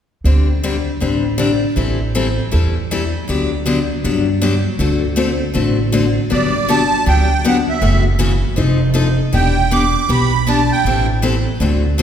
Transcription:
0.24 0.86 D2 medium
0.24 0.47 D3 soft
0.24 0.47 G3 soft
0.24 0.47 C4 soft
0.24 0.47 D4 medium
0.24 0.47 G4 medium
0.63 0.75 D3 medium
0.63 0.75 G3 medium
0.63 0.75 C4 medium
0.63 0.75 D4 medium
0.63 0.75 G4 medium
1.00 1.62 A1 medium
1.00 1.22 D3 soft
1.00 1.23 G3 soft
1.00 1.23 C4 medium
1.00 1.23 D4 medium
1.00 1.23 G4 medium
1.38 1.50 D3 medium
1.38 1.50 G3 medium
1.38 1.50 C4 medium
1.38 1.51 D4 medium
1.38 1.51 G4 medium
1.76 2.38 A1 medium
1.76 1.98 E3 soft
1.76 1.98 G3 soft
1.76 1.98 C4 medium
1.76 1.98 E4 medium
1.76 1.99 A4 medium
2.15 2.26 E3 medium
2.15 2.27 G3 medium
2.15 2.27 C4 medium
2.15 2.27 E4 medium
2.15 2.27 A4 medium
2.51 3.14 E2 medium
2.51 2.74 E3 soft
2.51 2.74 G3 medium
2.51 2.74 C4 soft
2.51 2.74 E4 medium
2.51 2.74 A4 medium
2.91 3.02 E3 medium
2.91 3.02 G3 medium
2.91 3.03 C4 medium
2.91 3.03 E4 medium
2.91 3.03 A4 medium
3.28 3.90 D2 medium
3.28 3.49 D3 soft
3.28 3.50 F#3 soft
3.28 3.50 B3 medium
3.28 3.51 D4 medium
3.28 3.50 G4 medium
3.66 3.78 D3 medium
3.66 3.77 F#3 medium
3.66 3.78 B3 medium
3.66 3.78 D4 medium
3.66 3.78 G4 medium
4.04 4.65 G2 medium
4.04 4.26 D3 soft
4.04 4.26 F#3 medium
4.04 4.26 B3 medium
4.04 4.26 D4 medium
4.04 4.26 G4 medium
4.41 4.53 D3 medium
4.41 4.53 F#3 medium
4.41 4.54 B3 medium
4.41 4.54 D4 medium
4.41 4.54 G4 medium
4.79 5.40 D2 medium
4.79 5.01 D3 medium
4.79 5.01 A3 soft
4.79 5.01 C4 medium
4.79 5.02 F#4 medium
4.79 5.02 A4 medium
5.16 5.29 D3 medium
5.16 5.28 A3 medium
5.16 5.29 C4 medium
5.16 5.29 F#4 medium
5.16 5.29 A4 medium
5.54 6.16 A1 medium
5.54 5.76 D3 medium
5.54 5.76 A3 medium
5.54 5.76 C4 medium
5.54 5.77 F#4 medium
5.54 5.77 A4 medium
5.92 6.04 D3 medium
5.92 6.04 A3 medium
5.92 6.05 C4 medium
5.92 6.05 F#4 medium
5.92 6.05 A4 medium
6.30 6.92 G1 medium
6.30 6.52 D3 medium
6.30 6.52 F#3 soft
6.30 6.52 B3 medium
6.30 6.53 D4 medium
6.30 6.53 G4 soft
6.30 6.71 D5 medium
6.68 6.80 D3 medium
6.68 6.80 F#3 medium
6.68 6.81 B3 medium
6.68 6.81 D4 medium
6.68 6.81 G4 medium
6.68 7.05 A5 medium
7.06 7.67 D2 medium
7.06 7.28 D3 soft
7.06 7.28 F#3 soft
7.06 7.28 B3 medium
7.06 7.28 D4 medium
7.06 7.28 G4 medium
7.06 7.47 G5 medium
7.45 7.56 D3 medium
7.45 7.56 F#3 medium
7.45 7.56 B3 medium
7.45 7.56 D4 medium
7.45 7.56 G4 medium
7.45 7.57 F#5 medium
7.69 8.04 E5 medium
7.81 8.43 F#1 medium
7.81 8.03 C#3 medium
7.81 8.03 E3 medium
7.81 8.04 A3 medium
7.81 8.03 C#4 medium
7.81 8.04 F#4 medium
8.19 8.31 C#3 medium
8.19 8.31 E3 medium
8.19 8.31 A3 medium
8.19 8.31 C#4 medium
8.19 8.32 F#4 medium
8.56 9.19 F1 medium
8.56 8.78 F3 medium
8.56 8.79 C4 medium
8.56 8.79 D#4 medium
8.56 8.79 A4 medium
8.94 9.06 F3 medium
8.94 9.06 C4 medium
8.94 9.07 D#4 medium
8.94 9.07 A4 medium
9.33 9.94 E1 medium
9.33 9.54 E3 medium
9.33 9.54 B3 medium
9.33 9.55 D4 medium
9.33 9.55 G4 medium
9.33 9.73 G5 medium
9.71 9.83 E3 medium
9.71 9.83 B3 medium
9.71 9.83 D4 medium
9.71 9.83 G4 medium
9.71 10.11 D6 medium
10.09 10.70 B1 medium
10.09 10.30 E3 medium
10.09 10.30 B3 medium
10.09 10.31 D4 medium
10.09 10.31 G4 medium
10.09 10.49 B5 medium
10.47 10.58 E3 medium
10.47 10.58 B3 medium
10.47 10.59 D4 medium
10.47 10.59 G4 medium
10.47 10.72 A5 medium
10.72 11.06 G5 medium
10.84 11.45 A1 medium
10.84 11.07 E3 medium
10.84 11.07 G3 soft
10.84 11.07 C4 medium
10.84 11.07 E4 medium
10.84 11.07 A4 soft
11.22 11.34 E3 medium
11.22 11.34 G3 medium
11.22 11.34 C4 medium
11.22 11.34 E4 medium
11.22 11.34 A4 medium
11.60 12.02 D2 medium
11.60 11.81 D3 medium
11.60 11.82 A3 medium
11.60 11.82 C4 medium
11.60 11.82 F#4 medium
11.60 11.82 A4 medium
11.98 12.02 D3 medium
11.98 12.02 A3 medium
11.98 12.02 C4 medium
11.98 12.02 F#4 medium

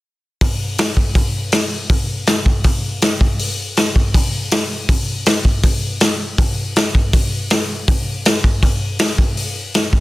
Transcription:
0.41 kick loud
0.41 open hi-hat medium
0.78 snare loud
0.78 open hi-hat medium
0.97 kick medium
1.15 kick loud
1.15 open hi-hat medium
1.52 snare loud
1.52 open hi-hat medium
1.89 kick loud
1.89 open hi-hat medium
2.27 snare loud
2.27 open hi-hat medium
2.46 kick medium
2.64 kick loud
2.64 open hi-hat medium
3.02 snare loud
3.02 open hi-hat medium
3.21 kick medium
3.39 open hi-hat medium
3.77 snare loud
3.77 open hi-hat medium
3.96 kick medium
4.14 kick loud
4.14 open hi-hat medium
4.51 snare loud
4.51 open hi-hat medium
4.89 kick loud
4.89 open hi-hat medium
5.26 snare loud
5.26 open hi-hat medium
5.45 kick medium
5.63 kick loud
5.63 open hi-hat medium
6.00 snare loud
6.00 open hi-hat medium
6.38 kick loud
6.38 open hi-hat medium
6.76 snare loud
6.76 open hi-hat medium
6.95 kick medium
7.13 kick loud
7.13 open hi-hat medium
7.50 snare loud
7.50 open hi-hat medium
7.88 kick loud
7.88 open hi-hat medium
8.25 snare loud
8.25 open hi-hat medium
8.44 kick medium
8.63 kick loud
8.63 open hi-hat medium
8.99 snare loud
8.99 open hi-hat medium
9.18 kick loud
9.37 open hi-hat medium
9.74 snare loud
9.74 open hi-hat medium
9.93 kick medium

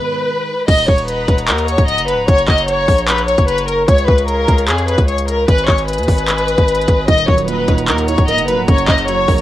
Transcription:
0.00 0.28 B2 medium
0.00 0.48 D#3 medium
0.00 0.68 G#3 medium
0.00 0.64 B4 medium
0.68 0.87 D#1 loud
0.68 2.27 D#5 medium
0.68 0.85 D#5 loud
0.68 3.85 F#5 medium
0.68 3.85 A#5 medium
0.68 2.27 D#6 medium
0.68 kick loud
0.68 closed hi-hat medium
0.68 crash loud
0.78 closed hi-hat medium
0.88 1.27 D#1 loud
0.88 1.05 C#5 medium
0.88 kick loud
0.98 closed hi-hat medium
1.08 1.46 B4 medium
1.08 closed hi-hat medium
1.28 1.50 D#1 loud
1.28 kick medium
1.28 closed hi-hat medium
1.38 closed hi-hat medium
1.48 1.77 D#2 loud
1.48 1.65 A#4 medium
1.48 clap loud
1.48 closed hi-hat medium
1.58 closed hi-hat medium
1.68 1.85 C#5 medium
1.68 closed hi-hat medium
1.78 2.00 C#1 loud
1.78 kick loud
1.78 closed hi-hat medium
1.88 2.05 D#5 loud
1.88 closed hi-hat medium
1.98 2.15 F#1 loud
1.98 closed hi-hat medium
2.08 2.25 B4 medium
2.08 closed hi-hat medium
2.13 2.27 C#1 loud
2.28 2.47 F#1 loud
2.28 3.87 C#5 medium
2.28 2.45 C#5 loud
2.28 5.45 C#6 medium
2.28 kick loud
2.28 closed hi-hat medium
2.38 closed hi-hat medium
2.48 2.87 F#1 loud
2.48 2.65 D#5 medium
2.48 kick loud
2.48 clap medium
2.58 closed hi-hat medium
2.68 3.06 C#5 loud
2.68 closed hi-hat medium
2.88 3.36 A#1 loud
2.88 kick medium
2.88 open hi-hat medium
2.98 closed hi-hat medium
3.08 3.25 B4 medium
3.08 clap loud
3.08 closed hi-hat medium
3.18 closed hi-hat medium
3.28 3.45 C#5 medium
3.28 closed hi-hat medium
3.38 3.86 F#1 loud
3.38 kick loud
3.38 closed hi-hat medium
3.48 3.65 B4 medium
3.48 closed hi-hat medium
3.58 closed hi-hat medium
3.68 3.85 A#4 medium
3.68 closed hi-hat medium
3.88 4.07 C#2 loud
3.88 5.47 G#4 medium
3.88 5.47 C#5 medium
3.88 4.05 C#5 loud
3.88 5.47 F5 medium
3.88 kick loud
3.88 closed hi-hat medium
3.98 closed hi-hat medium
4.08 4.47 C#2 loud
4.08 4.25 B4 medium
4.08 kick loud
4.18 closed hi-hat medium
4.28 4.66 A#4 medium
4.28 closed hi-hat medium
4.48 4.70 C#2 loud
4.48 kick medium
4.48 closed hi-hat medium
4.58 closed hi-hat medium
4.68 4.97 F2 loud
4.68 4.85 G#4 medium
4.68 clap loud
4.68 closed hi-hat medium
4.78 closed hi-hat medium
4.88 5.05 B4 medium
4.88 closed hi-hat medium
4.98 5.46 C#2 loud
4.98 kick loud
4.98 closed hi-hat medium
5.08 5.25 C#5 medium
5.08 closed hi-hat medium
5.18 closed hi-hat medium
5.28 5.45 A#4 medium
5.28 closed hi-hat medium
5.48 5.67 G#1 loud
5.48 5.65 B4 loud
5.48 7.07 B4 medium
5.48 8.39 D#5 medium
5.48 7.07 G#5 medium
5.48 8.40 D#6 medium
5.48 kick loud
5.48 closed hi-hat medium
5.58 closed hi-hat medium
5.68 6.00 G#1 loud
5.68 5.85 C#5 medium
5.68 kick loud
5.68 clap loud
5.78 closed hi-hat medium
5.88 7.04 B4 medium
5.88 closed hi-hat medium
5.93 closed hi-hat medium
5.98 6.08 D#2 loud
5.98 closed hi-hat medium
6.03 closed hi-hat soft
6.08 6.56 G#1 loud
6.08 kick medium
6.08 open hi-hat medium
6.18 closed hi-hat medium
6.28 clap loud
6.28 closed hi-hat medium
6.38 closed hi-hat medium
6.48 closed hi-hat medium
6.58 6.87 G#1 loud
6.58 kick loud
6.58 closed hi-hat medium
6.68 closed hi-hat medium
6.75 closed hi-hat medium
6.81 closed hi-hat soft
6.88 7.07 G#1 loud
6.88 kick loud
6.88 closed hi-hat medium
7.08 7.27 D#1 loud
7.08 8.08 D#3 loud
7.08 7.25 D#5 loud
7.08 9.42 F#5 medium
7.08 9.42 A#5 medium
7.08 kick loud
7.08 closed hi-hat medium
7.18 closed hi-hat medium
7.28 7.67 D#1 loud
7.28 8.28 F#3 medium
7.28 7.45 C#5 medium
7.28 kick loud
7.38 closed hi-hat medium
7.48 8.48 A#2 medium
7.48 7.86 B4 loud
7.48 closed hi-hat medium
7.68 7.90 D#1 loud
7.68 8.07 D#4 medium
7.68 kick medium
7.68 closed hi-hat medium
7.78 closed hi-hat medium
7.88 8.17 D#2 loud
7.88 8.05 A#4 medium
7.88 8.68 D#5 loud
7.88 clap loud
7.88 closed hi-hat medium
7.98 closed hi-hat medium
8.08 8.68 D#4 medium
8.08 8.25 C#5 medium
8.08 closed hi-hat medium
8.18 8.40 C#1 loud
8.18 kick loud
8.18 closed hi-hat medium
8.28 8.68 A#3 loud
8.28 8.45 D#5 loud
8.28 closed hi-hat medium
8.38 8.55 F#1 medium
8.38 closed hi-hat medium
8.48 8.68 F#3 medium
8.48 8.65 B4 medium
8.48 closed hi-hat medium
8.53 8.67 C#1 loud
8.68 8.87 F#1 loud
8.68 9.42 F#2 medium
8.68 9.42 C#5 medium
8.68 8.85 C#5 loud
8.68 9.42 C#6 medium
8.68 kick loud
8.68 closed hi-hat medium
8.78 closed hi-hat medium
8.88 9.27 F#1 loud
8.88 9.42 C#3 medium
8.88 9.05 D#5 medium
8.88 kick loud
8.88 clap loud
8.98 closed hi-hat medium
9.08 9.42 F#3 loud
9.08 9.42 C#5 loud
9.08 closed hi-hat medium
9.28 9.42 A#1 loud
9.28 9.42 A#3 medium
9.28 kick medium
9.28 open hi-hat medium
9.38 closed hi-hat medium

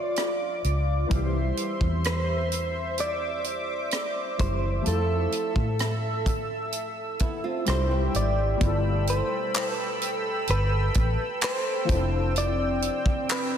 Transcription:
0.00 0.13 F2 medium
0.00 1.05 F3 medium
0.00 1.06 A3 medium
0.00 1.07 C4 medium
0.00 1.08 D4 medium
0.00 1.07 F4 medium
0.00 1.13 A4 medium
0.00 0.61 D5 medium
0.00 1.07 D5 medium
0.00 1.09 D6 medium
0.16 cross-stick loud
0.16 closed hi-hat medium
0.64 1.04 C#2 medium
0.64 closed hi-hat medium
1.07 4.33 E3 medium
1.07 4.34 G3 medium
1.11 1.51 C2 medium
1.11 4.36 C4 medium
1.11 4.82 C5 medium
1.11 4.82 E5 medium
1.11 2.97 C6 medium
1.11 kick loud
1.11 closed hi-hat medium
1.16 4.37 G4 medium
1.57 closed hi-hat medium
1.81 3.88 E2 medium
1.81 kick medium
2.04 3.00 C5 medium
2.04 cross-stick loud
2.04 closed hi-hat medium
2.52 closed hi-hat medium
2.98 4.36 D5 loud
2.98 4.84 D6 medium
2.98 closed hi-hat medium
3.44 closed hi-hat medium
3.91 cross-stick loud
3.91 closed hi-hat medium
4.37 4.79 F#1 medium
4.37 4.85 E3 soft
4.37 4.85 G3 soft
4.37 4.84 C4 soft
4.37 4.88 C5 loud
4.37 kick medium
4.37 closed hi-hat medium
4.42 4.87 G4 medium
4.81 7.61 F3 medium
4.81 7.62 A3 medium
4.86 5.26 F2 loud
4.86 7.63 C4 medium
4.86 7.64 E4 medium
4.86 7.64 A4 medium
4.86 6.70 A4 medium
4.86 7.64 E5 medium
4.86 7.64 E6 medium
4.86 closed hi-hat medium
4.91 7.66 A4 medium
5.32 closed hi-hat medium
5.56 7.63 A2 medium
5.56 kick medium
5.79 cross-stick loud
5.79 closed hi-hat medium
6.26 kick medium
6.26 closed hi-hat medium
6.72 closed hi-hat medium
7.19 7.43 B3 medium
7.19 7.43 E4 medium
7.19 kick medium
7.19 closed hi-hat medium
7.44 7.66 C4 medium
7.44 7.66 F4 medium
7.65 8.07 C2 loud
7.65 8.55 G3 medium
7.65 8.61 C4 medium
7.65 7.90 D4 medium
7.65 8.60 E4 medium
7.65 8.60 G4 medium
7.65 7.90 G4 medium
7.65 8.60 E5 medium
7.65 8.60 G5 medium
7.65 cross-stick loud
7.65 closed hi-hat medium
7.70 8.16 C5 medium
7.70 8.62 C5 medium
7.91 8.58 E4 medium
7.91 8.58 B4 medium
8.14 8.54 G#1 medium
8.14 9.09 D5 loud
8.14 closed hi-hat medium
8.57 11.84 B2 medium
8.57 11.83 G3 medium
8.61 9.20 G1 loud
8.61 11.85 E4 medium
8.61 11.86 F4 medium
8.61 11.86 A4 medium
8.61 13.58 G5 medium
8.61 11.86 B5 medium
8.61 11.86 E6 medium
8.61 kick loud
8.61 closed hi-hat medium
8.66 11.88 A4 medium
9.07 9.70 C5 medium
9.07 closed hi-hat medium
9.54 clap loud
9.54 closed hi-hat medium
9.70 9.99 B4 medium
10.02 closed hi-hat medium
10.47 10.88 G1 loud
10.47 11.44 B4 loud
10.47 closed hi-hat medium
10.94 11.15 A1 medium
10.94 kick loud
10.94 closed hi-hat medium
11.41 12.38 C5 loud
11.41 clap loud
11.41 closed hi-hat medium
11.84 13.58 F3 medium
11.84 13.58 C4 medium
11.89 12.88 F1 loud
11.89 13.58 C4 medium
11.89 13.58 D4 medium
11.89 13.58 E4 medium
11.89 13.58 E6 medium
11.89 kick loud
11.89 closed hi-hat medium
11.94 13.58 A4 medium
12.36 13.27 D5 loud
12.36 closed hi-hat medium
12.82 closed hi-hat medium
13.06 kick loud
13.29 13.58 B4 medium
13.29 clap loud
13.29 closed hi-hat medium

